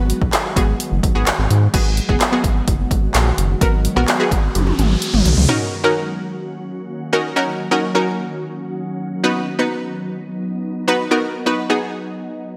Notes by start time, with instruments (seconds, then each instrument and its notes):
Already playing: analog synth bass G#1, ambient pad D#3 F#3 G#3 B3 F#4, synth pluck B3 F#4 B4
0.10 closed hi-hat
0.22 analog synth bass A#1, kick
0.33 snare, clap, closed hi-hat
0.56 analog synth bass G#1, synth pluck B3 F#4 G#4, kick, closed hi-hat
0.80 closed hi-hat
0.92 analog synth bass F#1
1.03 analog synth bass G#1, kick, closed hi-hat
1.15 analog synth bass G#1, synth pluck B3 F#4 G#4
1.27 analog synth bass G#1, snare, clap, closed hi-hat
1.39 analog synth bass G#1
1.50 analog synth bass G#2, closed hi-hat
1.74 analog synth bass G#1, ambient pad D#3 F#3 G#3 B3 F#4, synth pluck B3 F#4 G#4, kick, closed hi-hat, crash
1.97 closed hi-hat
2.09 analog synth bass F#1, synth pluck B3 F#4 G#4, kick
2.21 snare, clap, closed hi-hat
2.32 synth pluck B3 F#4 G#4
2.44 analog synth bass G#1, kick, closed hi-hat
2.68 analog synth bass F#1, kick, closed hi-hat
2.91 analog synth bass G#1, kick, closed hi-hat
3.14 analog synth bass A#1, snare, clap, closed hi-hat
3.38 analog synth bass F#1, closed hi-hat
3.61 analog synth bass G#1, synth pluck B3 F#4 A#4, kick, closed hi-hat, riser
3.85 closed hi-hat
3.96 analog synth bass A#1, synth pluck B3 F#4 A#4
4.08 snare, clap, closed hi-hat
4.20 synth pluck B3 F#4 G#4
4.31 analog synth bass G#1, kick, closed hi-hat
4.55 analog synth bass F#1, closed hi-hat, high tom
4.67 high tom
4.79 analog synth bass G#1, closed hi-hat, mid tom
5.02 closed hi-hat
5.14 analog synth bass G#1, mid tom
5.25 analog synth bass B1, closed hi-hat, floor tom
5.37 analog synth bass C#2, floor tom
5.49 ambient pad D#3 F#3 A#3 C#4 F#4, synth pluck C#4 D#4 F#4 A#4
5.84 synth pluck C#4 D#4 F#4 A#4
7.13 synth pluck C#4 D#4 F#4 A#4
7.36 synth pluck C#4 D#4 F#4 A#4
7.71 synth pluck C#4 D#4 F#4 A#4
7.95 synth pluck C#4 D#4 F#4 A#4
9.24 synth pluck B3 D#4 F#4 B4, ambient pad B3 D#4
9.59 synth pluck B3 D#4 F#4 B4
10.88 synth pluck B3 D#4 F#4 B4
11.11 synth pluck B3 D#4 F#4 A#4
11.46 synth pluck B3 D#4 F#4 B4
11.70 synth pluck B3 D#4 F#4 G#4